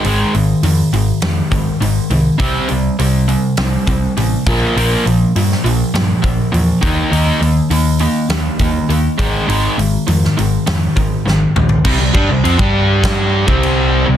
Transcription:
0.04 picked electric bass G#1, overdriven electric guitar G#2 D#3 G#3, open hi-hat
0.34 picked electric bass G#1, overdriven electric guitar G#2 D#3, open hi-hat
0.63 picked electric bass F2, overdriven electric guitar G#2 D#3, open hi-hat
0.93 picked electric bass G#1, overdriven electric guitar G#2 D#3, open hi-hat
1.22 picked electric bass F2, overdriven electric guitar G#2 D#3, snare, open hi-hat
1.51 picked electric bass G#1, overdriven electric guitar G#2 D#3, kick, open hi-hat
1.80 picked electric bass G#1, overdriven electric guitar G#2 D#3, open hi-hat
2.10 picked electric bass C2, overdriven electric guitar G#2 D#3, open hi-hat
2.38 picked electric bass C2, overdriven electric guitar C3 G3 C4, kick, open hi-hat
2.69 picked electric bass C2, overdriven electric guitar C3 G3, open hi-hat
2.99 picked electric bass C2, overdriven electric guitar C3 G3, open hi-hat
3.28 overdriven electric guitar C3 G3, open hi-hat
3.57 picked electric bass C2, overdriven electric guitar C3 G3, snare, open hi-hat
3.87 picked electric bass C2, overdriven electric guitar C3 G3, kick, open hi-hat
4.17 picked electric bass A1, overdriven electric guitar C3 G3, open hi-hat
4.46 picked electric bass A#1, overdriven electric guitar A#2 F3 A#3, kick, open hi-hat
4.76 picked electric bass A#1, overdriven electric guitar A#2 F3 A#3, open hi-hat
5.05 picked electric bass A#1, overdriven electric guitar A#2 F3, open hi-hat
5.35 picked electric bass G2, overdriven electric guitar A#2 F3, open hi-hat
5.52 snare
5.64 picked electric bass A#1, overdriven electric guitar A#2 F3, open hi-hat
5.94 picked electric bass G2, overdriven electric guitar A#2 F3, snare, open hi-hat
6.22 picked electric bass A#1, overdriven electric guitar A#2 F3, kick, open hi-hat
6.52 picked electric bass E2, overdriven electric guitar A#2 F3, open hi-hat
6.81 picked electric bass D#2, overdriven electric guitar D#3 A#3 D#4, kick, open hi-hat
7.11 picked electric bass D#2, overdriven electric guitar D#3 A#3 D#4, open hi-hat
7.40 picked electric bass D#2, overdriven electric guitar D#3 A#3, open hi-hat
7.70 picked electric bass D#2, overdriven electric guitar D#3 A#3, open hi-hat
7.99 overdriven electric guitar D#3 A#3, open hi-hat
8.29 picked electric bass D#2, overdriven electric guitar D#3 A#3, snare, open hi-hat
8.59 picked electric bass D#2, overdriven electric guitar D#3 A#3, kick, open hi-hat
8.88 picked electric bass D#2, overdriven electric guitar D#3 A#3, open hi-hat
9.18 picked electric bass G#1, overdriven electric guitar G#2 D#3 G#3, kick, open hi-hat
9.48 picked electric bass G#1, overdriven electric guitar G#2 D#3 G#3, open hi-hat
9.77 picked electric bass G#1, overdriven electric guitar G#2 D#3, open hi-hat
10.07 picked electric bass F2, overdriven electric guitar G#2 D#3, open hi-hat
10.25 snare
10.37 picked electric bass G#1, overdriven electric guitar G#2 D#3, open hi-hat
10.66 picked electric bass F2, overdriven electric guitar G#2 D#3, snare, open hi-hat
10.96 picked electric bass G#1, overdriven electric guitar G#2 D#3, kick, open hi-hat
11.26 picked electric bass G#1, overdriven electric guitar G#2 D#3, snare
11.56 picked electric bass A#1, overdriven electric guitar G#2 D#3, mid tom
11.69 floor tom
11.84 picked electric bass C2, overdriven electric guitar C3 G3, kick, crash
12.00 picked electric bass C2, overdriven electric guitar C3 G3
12.14 picked electric bass G2, overdriven electric guitar G3 D4, kick
12.29 picked electric bass C2, overdriven electric guitar C3 G3
12.44 picked electric bass F2, overdriven electric guitar F3 C4, crash
12.59 picked electric bass G2, overdriven electric guitar G3 D4 G4, kick
13.04 kick, snare, crash
13.47 picked electric bass C2, overdriven electric guitar C3 G3 C4, kick
13.63 crash
14.06 picked electric bass C2, overdriven electric guitar C3 G3

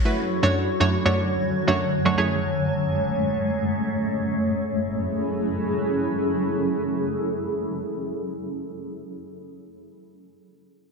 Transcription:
Already playing: ambient pad F#3 E4 F#4 A4 C#5
0.05 synth pluck A3 E4 F#4 B4
0.43 synth pluck F#2 A3 D4 F#4 C#5, ambient pad F#2
0.80 synth pluck F#2 A3 D4 F#4 C#5
1.05 synth pluck F#2 A3 D4 F#4 C#5
1.68 synth pluck F#2 A3 D4 F#4 C#5
2.05 synth pluck F#2 A3 D4 F#4 C#5
2.18 synth pluck F#2 A3 E4 G#4 C#5, ambient pad G#3 A3
4.42 ambient pad F#3 C#4 E4 G#4 A4

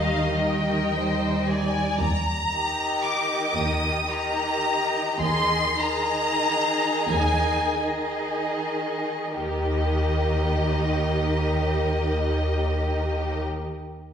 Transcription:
Already playing: double bass section D#2, cello section D#3, viola section G3 D#4, violin section D#5 F5
0.44 double bass section D#2, violin section A#4 G5
0.97 viola section G3 D#4, violin section C5
1.49 violin section D5 G#5
2.00 double bass section D#2, cello section D#2, violin section A#5
2.51 viola section D#3 D#4, violin section G4 D#5
3.04 violin section D6
3.56 cello section D#2, double bass section D#2, violin section D#6
4.09 viola section D#3 D#4, violin section G4 D#5 A#5
5.19 double bass section D#2, cello section D#2, viola section D#3 D#4, violin section G#4 D#5 C6
5.79 viola section D#3 D#4, violin section G#4 D#5 A#5
7.08 double bass section D#2, cello section D#2, violin section G#5
7.81 viola section D#3 D#4, violin section G#4 D#5
9.36 cello section D#2, double bass section D#2, viola section D#3 D#4, violin section G4 A#4 D#5

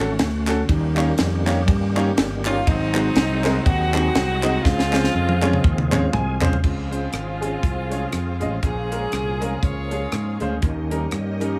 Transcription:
Already playing: tonewheel organ A3 C#4 F#4
0.00 fingered electric bass G#1, grand piano A4
0.19 fingered electric bass D2, snare, ride
0.47 grand piano C#4 F#4 A4, snare, clap, ride
0.69 fingered electric bass D#2, grand piano D#3, tonewheel organ D#3 G3 A#3 C#4 G4, kick, ride
0.97 grand piano A#3 C#4 D#4 G4 C#5, clap, ride
1.18 fingered electric bass F2, snare, ride
1.46 grand piano A#3 C#4 D#4 G4 C#5, snare, clap, ride
1.68 fingered electric bass G2, kick, ride
1.95 grand piano A#3 C#4 D#4 G4 C#5, clap, ride
2.17 fingered electric bass G1, snare, ride
2.45 grand piano A#3 C#4 D#4 G4 C#5, saxophone section F4, clap, ride
2.67 fingered electric bass G#1, grand piano G#2, saxophone section F#3 C4 D#4, tonewheel organ F#3 G#3 B3 D#4 G#4, kick, ride
2.75 tonewheel organ C4
2.94 grand piano G#3 C4 D#4 F#4 C5, clap, ride
3.15 fingered electric bass C2, snare, ride
3.44 grand piano G#3 C4 D#4 F#4 A#4, snare, clap, ride
3.64 fingered electric bass D#2, saxophone section C4 D#4 F#4, kick, ride
3.94 grand piano G#3 C4 D#4 F#4 G#4, clap, ride
4.15 fingered electric bass C2, snare, ride
4.43 grand piano G#3 C4 D#4 F#4 D#5, clap, ride
4.63 fingered electric bass C#2, grand piano C#3, tonewheel organ F3 G#3 C4 F4 G#4, saxophone section G#3 C4 F4, kick, snare
4.79 snare
4.93 grand piano G#3 C4 C#4 F4 C5, snare, clap
5.04 snare
5.14 fingered electric bass F2
5.29 high tom
5.42 grand piano G#3 C4 C#4 F4 C#5, clap, high tom
5.53 mid tom
5.64 fingered electric bass D#2, kick
5.78 mid tom
5.91 grand piano G#3 C4 C#4 F4 C#5 F5, clap, mid tom
6.13 fingered electric bass C2, grand piano G#5, tonewheel organ G#5, mid tom
6.41 grand piano G#3 C4 C#4 F4 C5, tonewheel organ F5, clap, floor tom
6.53 floor tom
6.63 fingered electric bass C#2, grand piano C#3, tonewheel organ F3 C4 F4 G#4, saxophone section G#3 C4 F4, string section F4 G#4 C5 F5, kick, crash
6.90 grand piano G#3 C#4 F4 C5, closed hi-hat
7.13 fingered electric bass G#1, cross-stick, closed hi-hat
7.41 grand piano G#3 C#4 F4 G#4, closed hi-hat
7.63 fingered electric bass C2, kick, closed hi-hat
7.90 grand piano G#3 C#4 F4 C#5, closed hi-hat
8.12 fingered electric bass F2, cross-stick, closed hi-hat
8.40 fingered electric bass A1, grand piano G#3 C#4 F4 D#5, cross-stick, closed hi-hat
8.62 fingered electric bass A#1, grand piano A#2, tonewheel organ F3 A#3 C#4 G#4, saxophone section C#4 F4 G#4, string section G#4 A#4, kick, closed hi-hat
8.91 grand piano G#3 C#4 F4 A#4, closed hi-hat
9.12 fingered electric bass C2, cross-stick, closed hi-hat
9.41 grand piano G#3 C#4 F4 A#4, cross-stick, closed hi-hat
9.62 fingered electric bass C#2, saxophone section F4 G#4 C#5, kick, closed hi-hat
9.91 grand piano G#3 C#4 F4 G#4, closed hi-hat
10.12 fingered electric bass G#2, cross-stick, closed hi-hat
10.40 fingered electric bass D2, grand piano G#3 C#4 F4 C5, closed hi-hat
10.62 fingered electric bass D#2, grand piano D#3, tonewheel organ D#3 A#3 C#4 F4, string section G4 A#4 C#5 D#5, kick, closed hi-hat
10.70 tonewheel organ G4
10.90 grand piano G3 C#4 D#4 A#4, closed hi-hat
11.11 fingered electric bass G2, cross-stick, closed hi-hat
11.40 grand piano G3 C#4 D#4 A#4, cross-stick, closed hi-hat

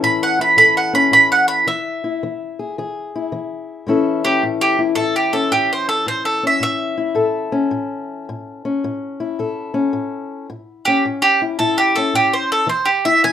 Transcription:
Already playing: steel-string acoustic guitar E3 C#4 E4 A4
0.03 steel-string acoustic guitar A2, mandolin B5
0.23 mandolin F#5
0.39 steel-string acoustic guitar E4, mandolin B5
0.56 steel-string acoustic guitar A2 A4, mandolin B5
0.77 mandolin F#5
0.93 steel-string acoustic guitar C#4, mandolin B5
1.11 steel-string acoustic guitar A2, mandolin B5
1.32 mandolin F#5
1.48 mandolin B5
1.67 steel-string acoustic guitar E3, mandolin E5
2.04 steel-string acoustic guitar E4
2.23 steel-string acoustic guitar E3
2.59 steel-string acoustic guitar G#4
2.78 steel-string acoustic guitar E3 G#4
3.15 steel-string acoustic guitar E4
3.32 steel-string acoustic guitar E3
3.87 steel-string acoustic guitar A2 E3 C#4 E4 A4
4.25 steel-string acoustic guitar C#4, mandolin G4
4.43 steel-string acoustic guitar A2
4.61 mandolin G4
4.79 steel-string acoustic guitar E4
4.95 steel-string acoustic guitar A2 E4, mandolin A4
5.16 mandolin G4
5.33 steel-string acoustic guitar C#4, mandolin A4
5.51 steel-string acoustic guitar A2, mandolin G4
5.73 mandolin C5
5.89 mandolin A4
6.06 steel-string acoustic guitar A2, mandolin C5
6.25 mandolin A4
6.43 steel-string acoustic guitar C#4, mandolin E5
6.60 steel-string acoustic guitar A2, mandolin E5
6.98 steel-string acoustic guitar E4
7.15 steel-string acoustic guitar A2 A4
7.52 steel-string acoustic guitar C#4
7.71 steel-string acoustic guitar A2
8.29 steel-string acoustic guitar A2
8.65 steel-string acoustic guitar C#4
8.84 steel-string acoustic guitar A2
9.20 steel-string acoustic guitar E4
9.39 steel-string acoustic guitar A2 A4
9.74 steel-string acoustic guitar C#4
9.93 steel-string acoustic guitar A2
10.50 steel-string acoustic guitar A2
10.85 steel-string acoustic guitar C#4, mandolin G4
11.05 steel-string acoustic guitar A2
11.22 mandolin G4
11.42 steel-string acoustic guitar E4
11.59 steel-string acoustic guitar A2 E4, mandolin A4
11.78 mandolin G4
11.96 steel-string acoustic guitar C#4, mandolin A4
12.14 steel-string acoustic guitar A2, mandolin G4
12.33 mandolin C5
12.52 mandolin A4
12.67 steel-string acoustic guitar E3, mandolin C5
12.85 mandolin G4
13.05 steel-string acoustic guitar E4, mandolin E5
13.24 steel-string acoustic guitar E3, mandolin G#5

